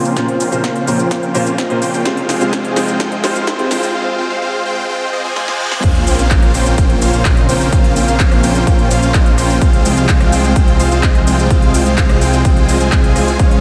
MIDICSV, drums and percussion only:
0, 0, Header, 1, 2, 480
1, 0, Start_track
1, 0, Key_signature, -4, "minor"
1, 0, Tempo, 472441
1, 170, Time_signature, 4, 2, 24, 8
1, 13824, End_track
2, 0, Start_track
2, 0, Title_t, "Drums"
2, 51, Note_on_c, 9, 82, 42
2, 153, Note_off_c, 9, 82, 0
2, 168, Note_on_c, 9, 38, 55
2, 168, Note_on_c, 9, 42, 88
2, 169, Note_on_c, 9, 36, 122
2, 171, Note_on_c, 9, 82, 28
2, 269, Note_off_c, 9, 38, 0
2, 269, Note_off_c, 9, 42, 0
2, 270, Note_off_c, 9, 36, 0
2, 272, Note_off_c, 9, 82, 0
2, 289, Note_on_c, 9, 42, 39
2, 390, Note_off_c, 9, 42, 0
2, 408, Note_on_c, 9, 46, 111
2, 411, Note_on_c, 9, 82, 78
2, 510, Note_off_c, 9, 46, 0
2, 512, Note_off_c, 9, 82, 0
2, 529, Note_on_c, 9, 42, 39
2, 532, Note_on_c, 9, 82, 43
2, 630, Note_off_c, 9, 42, 0
2, 633, Note_off_c, 9, 82, 0
2, 648, Note_on_c, 9, 38, 62
2, 648, Note_on_c, 9, 42, 91
2, 649, Note_on_c, 9, 36, 110
2, 651, Note_on_c, 9, 82, 30
2, 750, Note_off_c, 9, 36, 0
2, 750, Note_off_c, 9, 38, 0
2, 750, Note_off_c, 9, 42, 0
2, 753, Note_off_c, 9, 82, 0
2, 768, Note_on_c, 9, 42, 38
2, 870, Note_off_c, 9, 42, 0
2, 888, Note_on_c, 9, 46, 97
2, 891, Note_on_c, 9, 82, 70
2, 990, Note_off_c, 9, 46, 0
2, 993, Note_off_c, 9, 82, 0
2, 1009, Note_on_c, 9, 42, 39
2, 1012, Note_on_c, 9, 82, 42
2, 1110, Note_off_c, 9, 42, 0
2, 1113, Note_off_c, 9, 82, 0
2, 1129, Note_on_c, 9, 36, 122
2, 1129, Note_on_c, 9, 38, 64
2, 1129, Note_on_c, 9, 42, 95
2, 1132, Note_on_c, 9, 82, 33
2, 1230, Note_off_c, 9, 36, 0
2, 1230, Note_off_c, 9, 38, 0
2, 1230, Note_off_c, 9, 42, 0
2, 1233, Note_off_c, 9, 82, 0
2, 1249, Note_on_c, 9, 42, 39
2, 1350, Note_off_c, 9, 42, 0
2, 1368, Note_on_c, 9, 46, 106
2, 1371, Note_on_c, 9, 82, 74
2, 1470, Note_off_c, 9, 46, 0
2, 1473, Note_off_c, 9, 82, 0
2, 1489, Note_on_c, 9, 42, 41
2, 1491, Note_on_c, 9, 82, 43
2, 1590, Note_off_c, 9, 42, 0
2, 1593, Note_off_c, 9, 82, 0
2, 1608, Note_on_c, 9, 38, 63
2, 1608, Note_on_c, 9, 42, 87
2, 1609, Note_on_c, 9, 36, 112
2, 1611, Note_on_c, 9, 82, 30
2, 1710, Note_off_c, 9, 36, 0
2, 1710, Note_off_c, 9, 38, 0
2, 1710, Note_off_c, 9, 42, 0
2, 1713, Note_off_c, 9, 82, 0
2, 1728, Note_on_c, 9, 42, 40
2, 1830, Note_off_c, 9, 42, 0
2, 1848, Note_on_c, 9, 46, 96
2, 1851, Note_on_c, 9, 82, 69
2, 1949, Note_off_c, 9, 46, 0
2, 1952, Note_off_c, 9, 82, 0
2, 1971, Note_on_c, 9, 82, 42
2, 2072, Note_off_c, 9, 82, 0
2, 2087, Note_on_c, 9, 38, 71
2, 2087, Note_on_c, 9, 42, 87
2, 2089, Note_on_c, 9, 36, 125
2, 2090, Note_on_c, 9, 82, 28
2, 2189, Note_off_c, 9, 38, 0
2, 2189, Note_off_c, 9, 42, 0
2, 2190, Note_off_c, 9, 36, 0
2, 2192, Note_off_c, 9, 82, 0
2, 2207, Note_on_c, 9, 42, 40
2, 2309, Note_off_c, 9, 42, 0
2, 2327, Note_on_c, 9, 38, 81
2, 2327, Note_on_c, 9, 46, 111
2, 2330, Note_on_c, 9, 82, 75
2, 2429, Note_off_c, 9, 38, 0
2, 2429, Note_off_c, 9, 46, 0
2, 2432, Note_off_c, 9, 82, 0
2, 2447, Note_on_c, 9, 42, 38
2, 2450, Note_on_c, 9, 82, 44
2, 2549, Note_off_c, 9, 42, 0
2, 2552, Note_off_c, 9, 82, 0
2, 2569, Note_on_c, 9, 36, 117
2, 2569, Note_on_c, 9, 38, 77
2, 2569, Note_on_c, 9, 42, 87
2, 2571, Note_on_c, 9, 82, 31
2, 2670, Note_off_c, 9, 38, 0
2, 2670, Note_off_c, 9, 42, 0
2, 2671, Note_off_c, 9, 36, 0
2, 2673, Note_off_c, 9, 82, 0
2, 2688, Note_on_c, 9, 42, 38
2, 2790, Note_off_c, 9, 42, 0
2, 2808, Note_on_c, 9, 38, 78
2, 2808, Note_on_c, 9, 46, 107
2, 2811, Note_on_c, 9, 82, 74
2, 2909, Note_off_c, 9, 38, 0
2, 2909, Note_off_c, 9, 46, 0
2, 2912, Note_off_c, 9, 82, 0
2, 2928, Note_on_c, 9, 42, 38
2, 2930, Note_on_c, 9, 82, 41
2, 3029, Note_off_c, 9, 42, 0
2, 3032, Note_off_c, 9, 82, 0
2, 3048, Note_on_c, 9, 38, 86
2, 3048, Note_on_c, 9, 42, 92
2, 3049, Note_on_c, 9, 36, 122
2, 3051, Note_on_c, 9, 82, 33
2, 3149, Note_off_c, 9, 38, 0
2, 3149, Note_off_c, 9, 42, 0
2, 3151, Note_off_c, 9, 36, 0
2, 3152, Note_off_c, 9, 82, 0
2, 3168, Note_on_c, 9, 42, 40
2, 3269, Note_off_c, 9, 42, 0
2, 3288, Note_on_c, 9, 38, 82
2, 3288, Note_on_c, 9, 46, 108
2, 3291, Note_on_c, 9, 82, 75
2, 3390, Note_off_c, 9, 38, 0
2, 3390, Note_off_c, 9, 46, 0
2, 3393, Note_off_c, 9, 82, 0
2, 3408, Note_on_c, 9, 42, 39
2, 3411, Note_on_c, 9, 82, 43
2, 3509, Note_off_c, 9, 42, 0
2, 3512, Note_off_c, 9, 82, 0
2, 3528, Note_on_c, 9, 38, 82
2, 3528, Note_on_c, 9, 42, 86
2, 3529, Note_on_c, 9, 36, 126
2, 3531, Note_on_c, 9, 82, 31
2, 3630, Note_off_c, 9, 38, 0
2, 3630, Note_off_c, 9, 42, 0
2, 3631, Note_off_c, 9, 36, 0
2, 3633, Note_off_c, 9, 82, 0
2, 3648, Note_on_c, 9, 42, 39
2, 3750, Note_off_c, 9, 42, 0
2, 3768, Note_on_c, 9, 38, 79
2, 3768, Note_on_c, 9, 46, 104
2, 3771, Note_on_c, 9, 82, 70
2, 3870, Note_off_c, 9, 38, 0
2, 3870, Note_off_c, 9, 46, 0
2, 3873, Note_off_c, 9, 82, 0
2, 3891, Note_on_c, 9, 82, 41
2, 3993, Note_off_c, 9, 82, 0
2, 5448, Note_on_c, 9, 38, 57
2, 5550, Note_off_c, 9, 38, 0
2, 5568, Note_on_c, 9, 38, 65
2, 5669, Note_off_c, 9, 38, 0
2, 5807, Note_on_c, 9, 38, 84
2, 5909, Note_off_c, 9, 38, 0
2, 5927, Note_on_c, 9, 42, 98
2, 5927, Note_on_c, 9, 49, 93
2, 5929, Note_on_c, 9, 36, 122
2, 5930, Note_on_c, 9, 82, 32
2, 6029, Note_off_c, 9, 42, 0
2, 6029, Note_off_c, 9, 49, 0
2, 6031, Note_off_c, 9, 36, 0
2, 6032, Note_off_c, 9, 82, 0
2, 6047, Note_on_c, 9, 42, 43
2, 6149, Note_off_c, 9, 42, 0
2, 6167, Note_on_c, 9, 46, 115
2, 6170, Note_on_c, 9, 82, 85
2, 6268, Note_off_c, 9, 46, 0
2, 6271, Note_off_c, 9, 82, 0
2, 6287, Note_on_c, 9, 42, 43
2, 6290, Note_on_c, 9, 82, 44
2, 6389, Note_off_c, 9, 42, 0
2, 6392, Note_off_c, 9, 82, 0
2, 6408, Note_on_c, 9, 42, 94
2, 6409, Note_on_c, 9, 36, 119
2, 6409, Note_on_c, 9, 39, 124
2, 6411, Note_on_c, 9, 82, 33
2, 6509, Note_off_c, 9, 42, 0
2, 6510, Note_off_c, 9, 39, 0
2, 6511, Note_off_c, 9, 36, 0
2, 6512, Note_off_c, 9, 82, 0
2, 6528, Note_on_c, 9, 37, 59
2, 6528, Note_on_c, 9, 42, 42
2, 6629, Note_off_c, 9, 37, 0
2, 6629, Note_off_c, 9, 42, 0
2, 6647, Note_on_c, 9, 46, 100
2, 6650, Note_on_c, 9, 82, 72
2, 6749, Note_off_c, 9, 46, 0
2, 6752, Note_off_c, 9, 82, 0
2, 6766, Note_on_c, 9, 42, 39
2, 6769, Note_on_c, 9, 82, 46
2, 6868, Note_off_c, 9, 42, 0
2, 6871, Note_off_c, 9, 82, 0
2, 6888, Note_on_c, 9, 42, 102
2, 6889, Note_on_c, 9, 36, 118
2, 6890, Note_on_c, 9, 82, 36
2, 6989, Note_off_c, 9, 42, 0
2, 6991, Note_off_c, 9, 36, 0
2, 6992, Note_off_c, 9, 82, 0
2, 7007, Note_on_c, 9, 42, 40
2, 7109, Note_off_c, 9, 42, 0
2, 7128, Note_on_c, 9, 46, 109
2, 7131, Note_on_c, 9, 82, 81
2, 7229, Note_off_c, 9, 46, 0
2, 7232, Note_off_c, 9, 82, 0
2, 7247, Note_on_c, 9, 42, 42
2, 7250, Note_on_c, 9, 82, 46
2, 7349, Note_off_c, 9, 42, 0
2, 7352, Note_off_c, 9, 82, 0
2, 7368, Note_on_c, 9, 39, 119
2, 7368, Note_on_c, 9, 42, 94
2, 7369, Note_on_c, 9, 36, 118
2, 7370, Note_on_c, 9, 82, 34
2, 7469, Note_off_c, 9, 42, 0
2, 7470, Note_off_c, 9, 39, 0
2, 7471, Note_off_c, 9, 36, 0
2, 7472, Note_off_c, 9, 82, 0
2, 7488, Note_on_c, 9, 42, 43
2, 7589, Note_off_c, 9, 42, 0
2, 7608, Note_on_c, 9, 46, 103
2, 7611, Note_on_c, 9, 82, 75
2, 7710, Note_off_c, 9, 46, 0
2, 7712, Note_off_c, 9, 82, 0
2, 7730, Note_on_c, 9, 82, 43
2, 7832, Note_off_c, 9, 82, 0
2, 7849, Note_on_c, 9, 36, 122
2, 7849, Note_on_c, 9, 42, 93
2, 7852, Note_on_c, 9, 82, 32
2, 7951, Note_off_c, 9, 36, 0
2, 7951, Note_off_c, 9, 42, 0
2, 7954, Note_off_c, 9, 82, 0
2, 7969, Note_on_c, 9, 42, 42
2, 8070, Note_off_c, 9, 42, 0
2, 8088, Note_on_c, 9, 46, 121
2, 8091, Note_on_c, 9, 82, 81
2, 8190, Note_off_c, 9, 46, 0
2, 8193, Note_off_c, 9, 82, 0
2, 8209, Note_on_c, 9, 42, 40
2, 8212, Note_on_c, 9, 82, 45
2, 8310, Note_off_c, 9, 42, 0
2, 8313, Note_off_c, 9, 82, 0
2, 8329, Note_on_c, 9, 36, 123
2, 8329, Note_on_c, 9, 39, 124
2, 8329, Note_on_c, 9, 42, 99
2, 8332, Note_on_c, 9, 82, 33
2, 8430, Note_off_c, 9, 42, 0
2, 8431, Note_off_c, 9, 36, 0
2, 8431, Note_off_c, 9, 39, 0
2, 8433, Note_off_c, 9, 82, 0
2, 8449, Note_on_c, 9, 37, 62
2, 8449, Note_on_c, 9, 42, 43
2, 8551, Note_off_c, 9, 37, 0
2, 8551, Note_off_c, 9, 42, 0
2, 8569, Note_on_c, 9, 46, 113
2, 8572, Note_on_c, 9, 82, 75
2, 8670, Note_off_c, 9, 46, 0
2, 8673, Note_off_c, 9, 82, 0
2, 8689, Note_on_c, 9, 42, 42
2, 8692, Note_on_c, 9, 82, 43
2, 8791, Note_off_c, 9, 42, 0
2, 8794, Note_off_c, 9, 82, 0
2, 8809, Note_on_c, 9, 36, 122
2, 8810, Note_on_c, 9, 42, 102
2, 8813, Note_on_c, 9, 82, 36
2, 8911, Note_off_c, 9, 36, 0
2, 8911, Note_off_c, 9, 42, 0
2, 8914, Note_off_c, 9, 82, 0
2, 8929, Note_on_c, 9, 42, 42
2, 9031, Note_off_c, 9, 42, 0
2, 9049, Note_on_c, 9, 46, 108
2, 9052, Note_on_c, 9, 82, 75
2, 9151, Note_off_c, 9, 46, 0
2, 9154, Note_off_c, 9, 82, 0
2, 9169, Note_on_c, 9, 42, 41
2, 9172, Note_on_c, 9, 82, 43
2, 9271, Note_off_c, 9, 42, 0
2, 9274, Note_off_c, 9, 82, 0
2, 9289, Note_on_c, 9, 36, 123
2, 9289, Note_on_c, 9, 39, 120
2, 9289, Note_on_c, 9, 42, 91
2, 9292, Note_on_c, 9, 82, 32
2, 9390, Note_off_c, 9, 42, 0
2, 9391, Note_off_c, 9, 36, 0
2, 9391, Note_off_c, 9, 39, 0
2, 9393, Note_off_c, 9, 82, 0
2, 9409, Note_on_c, 9, 42, 41
2, 9510, Note_off_c, 9, 42, 0
2, 9529, Note_on_c, 9, 37, 57
2, 9529, Note_on_c, 9, 46, 107
2, 9532, Note_on_c, 9, 82, 71
2, 9631, Note_off_c, 9, 37, 0
2, 9631, Note_off_c, 9, 46, 0
2, 9634, Note_off_c, 9, 82, 0
2, 9651, Note_on_c, 9, 82, 42
2, 9753, Note_off_c, 9, 82, 0
2, 9769, Note_on_c, 9, 36, 127
2, 9769, Note_on_c, 9, 42, 85
2, 9772, Note_on_c, 9, 82, 31
2, 9871, Note_off_c, 9, 36, 0
2, 9871, Note_off_c, 9, 42, 0
2, 9874, Note_off_c, 9, 82, 0
2, 9889, Note_on_c, 9, 42, 40
2, 9990, Note_off_c, 9, 42, 0
2, 10009, Note_on_c, 9, 46, 121
2, 10012, Note_on_c, 9, 82, 82
2, 10111, Note_off_c, 9, 46, 0
2, 10114, Note_off_c, 9, 82, 0
2, 10129, Note_on_c, 9, 42, 39
2, 10131, Note_on_c, 9, 82, 45
2, 10230, Note_off_c, 9, 42, 0
2, 10233, Note_off_c, 9, 82, 0
2, 10249, Note_on_c, 9, 42, 92
2, 10250, Note_on_c, 9, 36, 127
2, 10250, Note_on_c, 9, 39, 127
2, 10252, Note_on_c, 9, 82, 33
2, 10350, Note_off_c, 9, 42, 0
2, 10351, Note_off_c, 9, 36, 0
2, 10351, Note_off_c, 9, 39, 0
2, 10353, Note_off_c, 9, 82, 0
2, 10369, Note_on_c, 9, 37, 66
2, 10369, Note_on_c, 9, 42, 40
2, 10470, Note_off_c, 9, 37, 0
2, 10470, Note_off_c, 9, 42, 0
2, 10489, Note_on_c, 9, 46, 110
2, 10492, Note_on_c, 9, 82, 73
2, 10590, Note_off_c, 9, 46, 0
2, 10593, Note_off_c, 9, 82, 0
2, 10609, Note_on_c, 9, 42, 38
2, 10612, Note_on_c, 9, 82, 41
2, 10711, Note_off_c, 9, 42, 0
2, 10714, Note_off_c, 9, 82, 0
2, 10729, Note_on_c, 9, 42, 91
2, 10730, Note_on_c, 9, 36, 127
2, 10732, Note_on_c, 9, 82, 34
2, 10831, Note_off_c, 9, 36, 0
2, 10831, Note_off_c, 9, 42, 0
2, 10833, Note_off_c, 9, 82, 0
2, 10849, Note_on_c, 9, 42, 38
2, 10950, Note_off_c, 9, 42, 0
2, 10968, Note_on_c, 9, 46, 114
2, 10971, Note_on_c, 9, 82, 78
2, 11070, Note_off_c, 9, 46, 0
2, 11073, Note_off_c, 9, 82, 0
2, 11089, Note_on_c, 9, 42, 38
2, 11091, Note_on_c, 9, 82, 44
2, 11190, Note_off_c, 9, 42, 0
2, 11193, Note_off_c, 9, 82, 0
2, 11209, Note_on_c, 9, 36, 127
2, 11209, Note_on_c, 9, 42, 85
2, 11210, Note_on_c, 9, 39, 115
2, 11212, Note_on_c, 9, 82, 31
2, 11311, Note_off_c, 9, 36, 0
2, 11311, Note_off_c, 9, 42, 0
2, 11312, Note_off_c, 9, 39, 0
2, 11314, Note_off_c, 9, 82, 0
2, 11329, Note_on_c, 9, 42, 38
2, 11431, Note_off_c, 9, 42, 0
2, 11450, Note_on_c, 9, 46, 108
2, 11452, Note_on_c, 9, 82, 71
2, 11551, Note_off_c, 9, 46, 0
2, 11554, Note_off_c, 9, 82, 0
2, 11572, Note_on_c, 9, 82, 42
2, 11674, Note_off_c, 9, 82, 0
2, 11689, Note_on_c, 9, 36, 123
2, 11689, Note_on_c, 9, 42, 86
2, 11692, Note_on_c, 9, 82, 33
2, 11790, Note_off_c, 9, 42, 0
2, 11791, Note_off_c, 9, 36, 0
2, 11793, Note_off_c, 9, 82, 0
2, 11809, Note_on_c, 9, 42, 38
2, 11911, Note_off_c, 9, 42, 0
2, 11929, Note_on_c, 9, 46, 121
2, 11932, Note_on_c, 9, 82, 87
2, 12031, Note_off_c, 9, 46, 0
2, 12034, Note_off_c, 9, 82, 0
2, 12049, Note_on_c, 9, 42, 39
2, 12052, Note_on_c, 9, 82, 45
2, 12151, Note_off_c, 9, 42, 0
2, 12154, Note_off_c, 9, 82, 0
2, 12169, Note_on_c, 9, 36, 118
2, 12169, Note_on_c, 9, 42, 94
2, 12170, Note_on_c, 9, 39, 117
2, 12172, Note_on_c, 9, 82, 32
2, 12271, Note_off_c, 9, 36, 0
2, 12271, Note_off_c, 9, 39, 0
2, 12271, Note_off_c, 9, 42, 0
2, 12273, Note_off_c, 9, 82, 0
2, 12288, Note_on_c, 9, 37, 66
2, 12288, Note_on_c, 9, 42, 38
2, 12390, Note_off_c, 9, 37, 0
2, 12390, Note_off_c, 9, 42, 0
2, 12409, Note_on_c, 9, 46, 102
2, 12411, Note_on_c, 9, 82, 74
2, 12510, Note_off_c, 9, 46, 0
2, 12513, Note_off_c, 9, 82, 0
2, 12528, Note_on_c, 9, 42, 37
2, 12531, Note_on_c, 9, 82, 43
2, 12630, Note_off_c, 9, 42, 0
2, 12633, Note_off_c, 9, 82, 0
2, 12648, Note_on_c, 9, 42, 94
2, 12649, Note_on_c, 9, 36, 123
2, 12651, Note_on_c, 9, 82, 34
2, 12750, Note_off_c, 9, 42, 0
2, 12751, Note_off_c, 9, 36, 0
2, 12753, Note_off_c, 9, 82, 0
2, 12768, Note_on_c, 9, 42, 38
2, 12869, Note_off_c, 9, 42, 0
2, 12888, Note_on_c, 9, 46, 108
2, 12891, Note_on_c, 9, 82, 76
2, 12990, Note_off_c, 9, 46, 0
2, 12993, Note_off_c, 9, 82, 0
2, 13008, Note_on_c, 9, 42, 38
2, 13011, Note_on_c, 9, 82, 43
2, 13109, Note_off_c, 9, 42, 0
2, 13112, Note_off_c, 9, 82, 0
2, 13128, Note_on_c, 9, 39, 111
2, 13128, Note_on_c, 9, 42, 88
2, 13129, Note_on_c, 9, 36, 126
2, 13130, Note_on_c, 9, 82, 31
2, 13229, Note_off_c, 9, 42, 0
2, 13230, Note_off_c, 9, 39, 0
2, 13231, Note_off_c, 9, 36, 0
2, 13232, Note_off_c, 9, 82, 0
2, 13248, Note_on_c, 9, 42, 38
2, 13350, Note_off_c, 9, 42, 0
2, 13368, Note_on_c, 9, 37, 59
2, 13368, Note_on_c, 9, 46, 107
2, 13371, Note_on_c, 9, 82, 75
2, 13470, Note_off_c, 9, 37, 0
2, 13470, Note_off_c, 9, 46, 0
2, 13473, Note_off_c, 9, 82, 0
2, 13491, Note_on_c, 9, 82, 43
2, 13593, Note_off_c, 9, 82, 0
2, 13608, Note_on_c, 9, 42, 82
2, 13610, Note_on_c, 9, 36, 119
2, 13611, Note_on_c, 9, 82, 32
2, 13710, Note_off_c, 9, 42, 0
2, 13711, Note_off_c, 9, 36, 0
2, 13713, Note_off_c, 9, 82, 0
2, 13729, Note_on_c, 9, 42, 41
2, 13824, Note_off_c, 9, 42, 0
2, 13824, End_track
0, 0, End_of_file